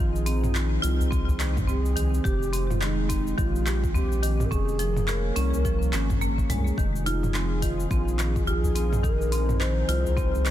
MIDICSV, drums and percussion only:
0, 0, Header, 1, 3, 480
1, 0, Start_track
1, 0, Key_signature, -4, "minor"
1, 0, Tempo, 566038
1, 1904, Time_signature, 4, 2, 24, 8
1, 8911, End_track
2, 0, Start_track
2, 0, Title_t, "Udu"
2, 846, Note_on_c, 9, 64, 77
2, 931, Note_off_c, 9, 64, 0
2, 1089, Note_on_c, 9, 64, 95
2, 1173, Note_off_c, 9, 64, 0
2, 1657, Note_on_c, 9, 64, 89
2, 1742, Note_off_c, 9, 64, 0
2, 3350, Note_on_c, 9, 64, 91
2, 3435, Note_off_c, 9, 64, 0
2, 3483, Note_on_c, 9, 64, 85
2, 3568, Note_off_c, 9, 64, 0
2, 4686, Note_on_c, 9, 64, 81
2, 4771, Note_off_c, 9, 64, 0
2, 4930, Note_on_c, 9, 64, 84
2, 5015, Note_off_c, 9, 64, 0
2, 5502, Note_on_c, 9, 64, 93
2, 5587, Note_off_c, 9, 64, 0
2, 7176, Note_on_c, 9, 64, 83
2, 7261, Note_off_c, 9, 64, 0
2, 7321, Note_on_c, 9, 64, 86
2, 7406, Note_off_c, 9, 64, 0
2, 8520, Note_on_c, 9, 64, 77
2, 8605, Note_off_c, 9, 64, 0
2, 8765, Note_on_c, 9, 64, 87
2, 8849, Note_off_c, 9, 64, 0
2, 8911, End_track
3, 0, Start_track
3, 0, Title_t, "Drums"
3, 133, Note_on_c, 9, 69, 33
3, 218, Note_off_c, 9, 69, 0
3, 224, Note_on_c, 9, 46, 95
3, 228, Note_on_c, 9, 69, 85
3, 308, Note_off_c, 9, 46, 0
3, 312, Note_off_c, 9, 69, 0
3, 369, Note_on_c, 9, 45, 54
3, 373, Note_on_c, 9, 69, 35
3, 454, Note_off_c, 9, 45, 0
3, 458, Note_off_c, 9, 69, 0
3, 466, Note_on_c, 9, 39, 78
3, 470, Note_on_c, 9, 69, 49
3, 551, Note_off_c, 9, 39, 0
3, 554, Note_off_c, 9, 69, 0
3, 709, Note_on_c, 9, 46, 89
3, 712, Note_on_c, 9, 69, 79
3, 793, Note_off_c, 9, 46, 0
3, 797, Note_off_c, 9, 69, 0
3, 855, Note_on_c, 9, 69, 34
3, 940, Note_off_c, 9, 69, 0
3, 950, Note_on_c, 9, 36, 107
3, 953, Note_on_c, 9, 69, 49
3, 1035, Note_off_c, 9, 36, 0
3, 1038, Note_off_c, 9, 69, 0
3, 1096, Note_on_c, 9, 69, 31
3, 1181, Note_off_c, 9, 69, 0
3, 1186, Note_on_c, 9, 39, 77
3, 1186, Note_on_c, 9, 46, 86
3, 1190, Note_on_c, 9, 69, 79
3, 1271, Note_off_c, 9, 39, 0
3, 1271, Note_off_c, 9, 46, 0
3, 1275, Note_off_c, 9, 69, 0
3, 1329, Note_on_c, 9, 45, 72
3, 1333, Note_on_c, 9, 36, 101
3, 1333, Note_on_c, 9, 69, 32
3, 1414, Note_off_c, 9, 45, 0
3, 1418, Note_off_c, 9, 36, 0
3, 1418, Note_off_c, 9, 69, 0
3, 1429, Note_on_c, 9, 69, 45
3, 1514, Note_off_c, 9, 69, 0
3, 1573, Note_on_c, 9, 69, 33
3, 1658, Note_off_c, 9, 69, 0
3, 1668, Note_on_c, 9, 46, 87
3, 1671, Note_on_c, 9, 69, 78
3, 1752, Note_off_c, 9, 46, 0
3, 1756, Note_off_c, 9, 69, 0
3, 1816, Note_on_c, 9, 69, 34
3, 1901, Note_off_c, 9, 69, 0
3, 1908, Note_on_c, 9, 36, 120
3, 1914, Note_on_c, 9, 69, 48
3, 1993, Note_off_c, 9, 36, 0
3, 1999, Note_off_c, 9, 69, 0
3, 2057, Note_on_c, 9, 69, 32
3, 2142, Note_off_c, 9, 69, 0
3, 2149, Note_on_c, 9, 46, 92
3, 2152, Note_on_c, 9, 69, 82
3, 2233, Note_off_c, 9, 46, 0
3, 2237, Note_off_c, 9, 69, 0
3, 2294, Note_on_c, 9, 45, 53
3, 2298, Note_on_c, 9, 69, 32
3, 2379, Note_off_c, 9, 45, 0
3, 2382, Note_off_c, 9, 69, 0
3, 2387, Note_on_c, 9, 39, 81
3, 2391, Note_on_c, 9, 69, 46
3, 2472, Note_off_c, 9, 39, 0
3, 2476, Note_off_c, 9, 69, 0
3, 2626, Note_on_c, 9, 46, 88
3, 2628, Note_on_c, 9, 36, 67
3, 2630, Note_on_c, 9, 69, 85
3, 2711, Note_off_c, 9, 46, 0
3, 2713, Note_off_c, 9, 36, 0
3, 2715, Note_off_c, 9, 69, 0
3, 2775, Note_on_c, 9, 69, 33
3, 2860, Note_off_c, 9, 69, 0
3, 2867, Note_on_c, 9, 36, 109
3, 2872, Note_on_c, 9, 69, 49
3, 2952, Note_off_c, 9, 36, 0
3, 2956, Note_off_c, 9, 69, 0
3, 3015, Note_on_c, 9, 69, 31
3, 3100, Note_off_c, 9, 69, 0
3, 3108, Note_on_c, 9, 39, 74
3, 3108, Note_on_c, 9, 46, 78
3, 3112, Note_on_c, 9, 69, 84
3, 3193, Note_off_c, 9, 39, 0
3, 3193, Note_off_c, 9, 46, 0
3, 3197, Note_off_c, 9, 69, 0
3, 3253, Note_on_c, 9, 36, 100
3, 3256, Note_on_c, 9, 69, 32
3, 3337, Note_off_c, 9, 36, 0
3, 3341, Note_off_c, 9, 69, 0
3, 3353, Note_on_c, 9, 69, 46
3, 3438, Note_off_c, 9, 69, 0
3, 3495, Note_on_c, 9, 69, 35
3, 3579, Note_off_c, 9, 69, 0
3, 3588, Note_on_c, 9, 46, 86
3, 3592, Note_on_c, 9, 69, 81
3, 3673, Note_off_c, 9, 46, 0
3, 3677, Note_off_c, 9, 69, 0
3, 3732, Note_on_c, 9, 45, 72
3, 3736, Note_on_c, 9, 69, 35
3, 3817, Note_off_c, 9, 45, 0
3, 3821, Note_off_c, 9, 69, 0
3, 3829, Note_on_c, 9, 36, 112
3, 3834, Note_on_c, 9, 69, 47
3, 3914, Note_off_c, 9, 36, 0
3, 3919, Note_off_c, 9, 69, 0
3, 3972, Note_on_c, 9, 69, 32
3, 4057, Note_off_c, 9, 69, 0
3, 4063, Note_on_c, 9, 46, 86
3, 4067, Note_on_c, 9, 69, 84
3, 4148, Note_off_c, 9, 46, 0
3, 4152, Note_off_c, 9, 69, 0
3, 4211, Note_on_c, 9, 45, 56
3, 4214, Note_on_c, 9, 69, 33
3, 4295, Note_off_c, 9, 45, 0
3, 4299, Note_off_c, 9, 69, 0
3, 4306, Note_on_c, 9, 39, 80
3, 4309, Note_on_c, 9, 69, 46
3, 4390, Note_off_c, 9, 39, 0
3, 4394, Note_off_c, 9, 69, 0
3, 4547, Note_on_c, 9, 46, 81
3, 4551, Note_on_c, 9, 69, 80
3, 4632, Note_off_c, 9, 46, 0
3, 4636, Note_off_c, 9, 69, 0
3, 4696, Note_on_c, 9, 69, 33
3, 4781, Note_off_c, 9, 69, 0
3, 4790, Note_on_c, 9, 36, 100
3, 4794, Note_on_c, 9, 69, 51
3, 4875, Note_off_c, 9, 36, 0
3, 4879, Note_off_c, 9, 69, 0
3, 4938, Note_on_c, 9, 69, 29
3, 5023, Note_off_c, 9, 69, 0
3, 5029, Note_on_c, 9, 39, 79
3, 5029, Note_on_c, 9, 46, 80
3, 5033, Note_on_c, 9, 69, 83
3, 5114, Note_off_c, 9, 39, 0
3, 5114, Note_off_c, 9, 46, 0
3, 5118, Note_off_c, 9, 69, 0
3, 5170, Note_on_c, 9, 45, 69
3, 5173, Note_on_c, 9, 36, 95
3, 5174, Note_on_c, 9, 69, 32
3, 5254, Note_off_c, 9, 45, 0
3, 5258, Note_off_c, 9, 36, 0
3, 5258, Note_off_c, 9, 69, 0
3, 5271, Note_on_c, 9, 69, 46
3, 5356, Note_off_c, 9, 69, 0
3, 5412, Note_on_c, 9, 36, 60
3, 5418, Note_on_c, 9, 69, 31
3, 5497, Note_off_c, 9, 36, 0
3, 5503, Note_off_c, 9, 69, 0
3, 5510, Note_on_c, 9, 45, 56
3, 5510, Note_on_c, 9, 46, 88
3, 5514, Note_on_c, 9, 69, 78
3, 5595, Note_off_c, 9, 45, 0
3, 5595, Note_off_c, 9, 46, 0
3, 5599, Note_off_c, 9, 69, 0
3, 5657, Note_on_c, 9, 69, 34
3, 5742, Note_off_c, 9, 69, 0
3, 5747, Note_on_c, 9, 36, 108
3, 5755, Note_on_c, 9, 69, 46
3, 5832, Note_off_c, 9, 36, 0
3, 5840, Note_off_c, 9, 69, 0
3, 5899, Note_on_c, 9, 69, 31
3, 5984, Note_off_c, 9, 69, 0
3, 5991, Note_on_c, 9, 46, 87
3, 5995, Note_on_c, 9, 69, 81
3, 6075, Note_off_c, 9, 46, 0
3, 6079, Note_off_c, 9, 69, 0
3, 6133, Note_on_c, 9, 45, 58
3, 6137, Note_on_c, 9, 69, 31
3, 6218, Note_off_c, 9, 45, 0
3, 6222, Note_off_c, 9, 69, 0
3, 6226, Note_on_c, 9, 39, 77
3, 6230, Note_on_c, 9, 69, 47
3, 6311, Note_off_c, 9, 39, 0
3, 6315, Note_off_c, 9, 69, 0
3, 6465, Note_on_c, 9, 46, 85
3, 6466, Note_on_c, 9, 36, 61
3, 6469, Note_on_c, 9, 69, 81
3, 6550, Note_off_c, 9, 46, 0
3, 6551, Note_off_c, 9, 36, 0
3, 6554, Note_off_c, 9, 69, 0
3, 6613, Note_on_c, 9, 69, 34
3, 6697, Note_off_c, 9, 69, 0
3, 6706, Note_on_c, 9, 36, 105
3, 6709, Note_on_c, 9, 69, 45
3, 6790, Note_off_c, 9, 36, 0
3, 6793, Note_off_c, 9, 69, 0
3, 6853, Note_on_c, 9, 69, 29
3, 6938, Note_off_c, 9, 69, 0
3, 6945, Note_on_c, 9, 39, 69
3, 6945, Note_on_c, 9, 46, 80
3, 6949, Note_on_c, 9, 69, 77
3, 7030, Note_off_c, 9, 39, 0
3, 7030, Note_off_c, 9, 46, 0
3, 7034, Note_off_c, 9, 69, 0
3, 7089, Note_on_c, 9, 36, 100
3, 7091, Note_on_c, 9, 69, 32
3, 7174, Note_off_c, 9, 36, 0
3, 7176, Note_off_c, 9, 69, 0
3, 7186, Note_on_c, 9, 69, 47
3, 7271, Note_off_c, 9, 69, 0
3, 7330, Note_on_c, 9, 69, 33
3, 7415, Note_off_c, 9, 69, 0
3, 7425, Note_on_c, 9, 46, 86
3, 7429, Note_on_c, 9, 69, 78
3, 7510, Note_off_c, 9, 46, 0
3, 7514, Note_off_c, 9, 69, 0
3, 7569, Note_on_c, 9, 45, 80
3, 7573, Note_on_c, 9, 69, 34
3, 7654, Note_off_c, 9, 45, 0
3, 7658, Note_off_c, 9, 69, 0
3, 7665, Note_on_c, 9, 36, 108
3, 7668, Note_on_c, 9, 69, 42
3, 7750, Note_off_c, 9, 36, 0
3, 7753, Note_off_c, 9, 69, 0
3, 7813, Note_on_c, 9, 69, 29
3, 7898, Note_off_c, 9, 69, 0
3, 7905, Note_on_c, 9, 46, 89
3, 7909, Note_on_c, 9, 69, 74
3, 7990, Note_off_c, 9, 46, 0
3, 7993, Note_off_c, 9, 69, 0
3, 8048, Note_on_c, 9, 45, 62
3, 8052, Note_on_c, 9, 69, 30
3, 8133, Note_off_c, 9, 45, 0
3, 8137, Note_off_c, 9, 69, 0
3, 8146, Note_on_c, 9, 39, 76
3, 8150, Note_on_c, 9, 69, 43
3, 8231, Note_off_c, 9, 39, 0
3, 8235, Note_off_c, 9, 69, 0
3, 8385, Note_on_c, 9, 46, 90
3, 8389, Note_on_c, 9, 69, 78
3, 8470, Note_off_c, 9, 46, 0
3, 8474, Note_off_c, 9, 69, 0
3, 8534, Note_on_c, 9, 69, 30
3, 8618, Note_off_c, 9, 69, 0
3, 8627, Note_on_c, 9, 36, 108
3, 8630, Note_on_c, 9, 69, 44
3, 8711, Note_off_c, 9, 36, 0
3, 8715, Note_off_c, 9, 69, 0
3, 8775, Note_on_c, 9, 69, 28
3, 8860, Note_off_c, 9, 69, 0
3, 8867, Note_on_c, 9, 39, 73
3, 8867, Note_on_c, 9, 46, 84
3, 8871, Note_on_c, 9, 69, 75
3, 8911, Note_off_c, 9, 39, 0
3, 8911, Note_off_c, 9, 46, 0
3, 8911, Note_off_c, 9, 69, 0
3, 8911, End_track
0, 0, End_of_file